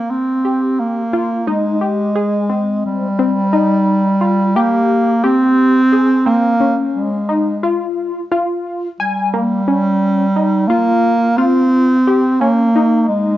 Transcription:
Already playing: A#3
0.10 C4
0.45 G4
0.80 A#3
1.13 F4
1.47 G#3 D#4
1.81 G4
2.16 G#4
2.49 C4
2.85 G3
3.19 C4
3.53 D#4
4.21 F4
4.56 A#3 G4
5.24 C4 G4
5.92 G#4
6.26 A#3 C4
6.61 C#4
6.94 G#3
7.29 D#4
7.63 F4
8.31 F4
9.00 G3 G#5
9.34 A#3
9.68 C#4
10.36 D#4
10.68 A#3 F4
11.37 C4 F4
12.07 G4
12.40 A#3 C#4
12.76 D#4
13.08 G#3

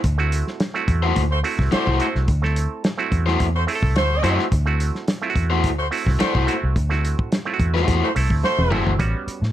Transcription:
0.04 D2, kick, closed hi-hat
0.18 A3 C4 E4 F#4
0.32 closed hi-hat
0.47 snare
0.60 snare, closed hi-hat
0.74 A3 C4 E4 F#4
0.88 E2, kick, closed hi-hat
1.03 A3 E4 F#4 C5
1.16 D2, kick, closed hi-hat
1.31 A3 F#4 C5
1.43 A3 C4 E4 F#4, open hi-hat
1.59 C2, kick, snare
1.71 A3 E4 F#4 C5 D5, snare, closed hi-hat
1.86 C2 A3 E4 F#4 C5, kick
2.00 A3 C4 E4 F#4, closed hi-hat
2.15 C2, snare
2.28 D2, kick, closed hi-hat
2.42 A3 C4 E4 A4, snare
2.56 closed hi-hat
2.84 snare, closed hi-hat
2.98 A3 C4 E4 F#4
3.12 E2, kick, closed hi-hat
3.26 A3 E4 F#4 C5, snare
3.40 E2, kick, closed hi-hat
3.55 A3 F#4 C5
3.67 A3 C4 E4 G#4, open hi-hat
3.75 A4
3.83 C2, kick
3.96 D2 A3 F#4 C5, snare, closed hi-hat
4.23 F#2 A3 C4 E4 F#4 C5, closed hi-hat
4.39 snare
4.52 D2, kick, closed hi-hat
4.66 A3 C4 E4 F#4
4.80 closed hi-hat
4.95 snare
5.08 snare, closed hi-hat
5.22 A3 C4 E4 F4
5.30 F#4
5.36 E2, kick, closed hi-hat
5.50 A3 E4 F#4 C5
5.64 D2, kick, closed hi-hat
5.79 A3 F#4 C5
5.91 A3 C4 E4 F#4, open hi-hat
6.07 C2, kick, snare
6.19 A3 E4 F#4 C5 D5, snare, closed hi-hat
6.33 C2 A3 E4 F#4 C5, kick
6.46 A3 C4 E4 F#4, closed hi-hat
6.63 C2
6.76 D2, kick, closed hi-hat
6.89 A3 C4 E4 F#4, snare
7.05 closed hi-hat
7.19 kick
7.32 snare, closed hi-hat
7.45 A3 C4 E4 F4
7.54 F#4
7.60 E2, kick, closed hi-hat
7.74 A3 E4 F#4 C5, snare
7.86 E2 A3 E4 F#4 C5, kick, closed hi-hat
8.03 A3 F#4 C5
8.15 C2 A3 C4 E4 A4, open hi-hat
8.30 D2, kick
8.44 A3 F#4 C5, snare
8.58 E1, high tom
8.71 F#1 A3 C4 E4 F#4 C5, mid tom
8.87 G1, floor tom
8.99 A1 G3 B3 C#4 F#4, kick, closed hi-hat
9.27 muted fingered electric bass stroke, closed hi-hat
9.42 A2, snare

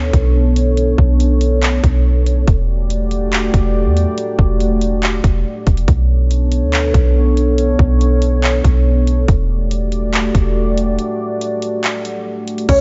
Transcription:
Already playing: D2 B3 D4 A4 C#5
0.13 B1, kick, closed hi-hat
0.56 closed hi-hat
0.77 closed hi-hat
0.98 B1, kick
1.20 closed hi-hat
1.41 closed hi-hat
1.63 clap, closed hi-hat
1.84 B1, kick, closed hi-hat
2.26 closed hi-hat
2.47 E1 A3 F#4 G4 D5, kick, closed hi-hat
2.90 closed hi-hat
3.11 closed hi-hat
3.33 clap, closed hi-hat
3.54 E1, kick, closed hi-hat
3.86 E2
3.97 closed hi-hat
4.18 closed hi-hat
4.39 E1, kick
4.60 closed hi-hat
4.81 closed hi-hat
5.03 clap, closed hi-hat
5.24 E1, kick, closed hi-hat
5.67 E1, kick, closed hi-hat
5.77 closed hi-hat
5.88 B1 B3 D4 A4 C#5, kick, closed hi-hat
6.31 closed hi-hat
6.52 closed hi-hat
6.62 D2
6.73 clap, closed hi-hat
6.94 B1, kick, closed hi-hat
7.37 closed hi-hat
7.58 closed hi-hat
7.79 B1, kick
8.01 closed hi-hat
8.22 closed hi-hat
8.43 clap, closed hi-hat
8.64 B1, kick, closed hi-hat
9.07 closed hi-hat
9.28 E1 A3 F#4 G4 D5, kick, closed hi-hat
9.71 closed hi-hat
9.92 closed hi-hat
10.14 clap, closed hi-hat
10.35 E1, kick, closed hi-hat
10.78 closed hi-hat
10.99 closed hi-hat
11.41 closed hi-hat
11.62 closed hi-hat
11.84 clap, closed hi-hat
12.05 closed hi-hat
12.48 closed hi-hat
12.58 closed hi-hat
12.69 B1 D3 A3 B3 C#4 F#4 C#5, kick, closed hi-hat, crash

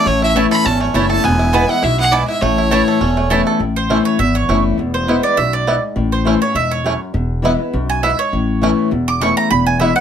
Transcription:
Already playing: E4 A4
0.06 A1 A2 A3 C#5
0.22 E4 E5
0.35 E3 A3 C#4 E4 C#5 A5
0.51 A4 B5
0.65 G#1 E2 C#4 A5
0.81 A3 C#5
0.94 F#1 E3 A3 C#4 E4 C#5 E5 A5
1.10 A4 A5
1.24 E1 E2 B3 G#5
1.39 E4
1.53 E3 G#3 B3 E4 B4 G#5
1.69 E4 F#5
1.83 B1 F#2 E4 E5
1.99 B3 F#5
2.12 G#2 B3 E4 B4 D5 G#5
2.28 E4 E5
2.41 A1 A2 A3 C#5
2.58 E4
2.70 E3 A3 C#4 E4 C#5 A5
2.88 A4
3.00 E1 E2 C#4
3.17 A3
3.30 E3 A3 C#4 E4 C#5 A5
3.47 A4
3.59 A1 A2
3.76 C5
3.89 E3 A3 C#4 E4
4.05 C#5
4.19 G#1 E2 E5
4.35 C#5
4.48 F#1 E3 A3 C#4 E4
4.78 E1 E2
4.94 C5
5.07 E3 G#3 B3 E4
5.23 D5
5.37 B1 F#2 E5
5.53 D5
5.67 G#2 B3 E4
5.96 A1 A2
6.12 C5
6.25 E3 A3 C#4 E4
6.40 C#4 E4 C#5
6.55 E1 G#2 E5
6.71 C#5
6.84 F#2 A3 C#4 E4
7.14 E1 E2
7.42 E3 G#3 B3 E4
7.59 B3 E4
7.73 B1 F#2
7.90 G#5
8.03 G#2 B3 E4 E5
8.19 C#5
8.33 A1 A2
8.61 E3 A3 C#4 E4
8.91 E1 E2
9.08 D6
9.21 E3 A3 C#4 E4 C#6
9.37 A#5
9.50 E1 E2 B5
9.66 G#5
9.80 E3 G#3 B3 E4 E5
9.96 E4 F#5

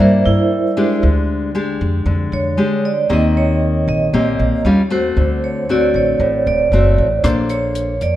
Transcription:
Already playing: C5 D5 E5
0.00 G2 G3 A#3 D4 E4 A#4
0.26 G2 E4
0.77 G#3 D4 G4
1.02 D2 D3
1.55 G#3 D4 G4
1.81 F2
2.06 F2 D3
2.32 F2 C#5
2.57 G#3 D4 G4
2.85 D5
3.09 D#2 D#3 A#3 C4 G4 D#5
3.37 C#5
3.88 A#1 D#5
4.13 A#1 A#2 A#3 C4 G4
4.39 A#1
4.65 D#2 G3 C#4 F4
4.90 A3 C4 F#4 C5
5.17 D2 D3
5.44 C#5
5.69 A3 C4 F#4 D5
5.94 A1 C#5
6.20 A1 A2
6.47 D1 D5
6.72 F#1 A3 C4 F#4
6.98 A1
7.23 A#1 A#3 D4 A4 C5, kick, cross-stick, closed hi-hat
7.49 C#5, closed hi-hat
7.75 closed hi-hat
8.01 F2 D5, closed hi-hat

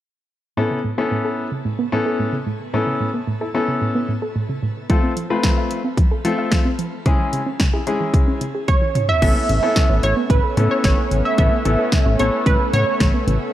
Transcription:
0.57 A2 B3 C#4 E4 A4
0.71 C#3
0.84 A2
0.98 B3 C#4 E4 A4
1.11 A2
1.25 A4
1.52 C#3
1.65 A2
1.79 B3
1.92 A2 B3 C#4 E4 A4
2.06 A4
2.19 A2
2.33 C#3
2.46 A2
2.73 A2 B3 C#4 E4 A4
2.87 C#3
3.00 A2
3.14 B3
3.27 A2
3.41 E4 A4
3.54 B3 C#4 E4 A4
3.68 C#3
3.82 A2
3.95 B3
4.09 A2
4.22 A4
4.36 A2
4.49 C#3
4.63 A2
4.90 F3 A3 C4 F4 A4, kick, closed hi-hat
5.03 C4
5.17 F3, closed hi-hat
5.30 A3 C4 F4 A4 B4
5.43 F3, kick, snare, closed hi-hat
5.57 F5
5.71 closed hi-hat
5.84 C4
5.97 F3, kick, closed hi-hat
6.11 A4
6.25 F3 A3 C4 F4 A4, closed hi-hat
6.38 F5
6.52 F3, kick, snare, closed hi-hat
6.65 C4
6.79 F3, closed hi-hat
7.06 C#3 G#3 C#4 E4 G#4, kick, closed hi-hat
7.19 E3
7.33 C#3, closed hi-hat
7.46 C#4
7.60 C#3, kick, snare, closed hi-hat
7.73 E4 G#4
7.87 G#3 C#4 E4 G#4, closed hi-hat
8.00 E3
8.14 C#3, kick, closed hi-hat
8.28 C#4
8.41 C#3, closed hi-hat
8.55 G#4
8.68 C#3 C#5, kick, closed hi-hat, high tom
8.82 E3
8.95 C#3, closed hi-hat, mid tom
9.09 E5, floor tom
9.22 A1 C#3 A3 B3 C#4 E4 A4 E5, kick, closed hi-hat, crash
9.36 B3
9.49 A1 C#3, closed hi-hat
9.63 B3 C#4 E4 A4
9.76 C#3, kick, snare, closed hi-hat
9.90 A1 C#5
10.03 A1 C#5, closed hi-hat
10.17 B3
10.30 A1 C#3 B4, kick, closed hi-hat
10.44 A4
10.57 A2 C#3 B3 C#4 E4 A4, closed hi-hat
10.71 C#5
10.84 A1 C#3 C#5, kick, snare, closed hi-hat
10.98 B3
11.11 A1 C#3, closed hi-hat
11.25 E5
11.38 A1 C#3 B3 C#4 E4 A4 E5, kick, closed hi-hat
11.52 B3
11.65 A1 C#3 B3 C#4 E4 A4, closed hi-hat
11.79 A4
11.92 C#3, kick, snare, closed hi-hat
12.06 A1 C#5
12.19 A1 B3 C#4 E4 A4 C#5, closed hi-hat
12.33 B3
12.46 A1 C#3 B4, kick, closed hi-hat
12.60 A4
12.73 A2 C#3 C#5, closed hi-hat
12.87 C#5
13.00 A1 C#3, kick, snare, closed hi-hat
13.14 B3
13.27 A1 C#3, closed hi-hat

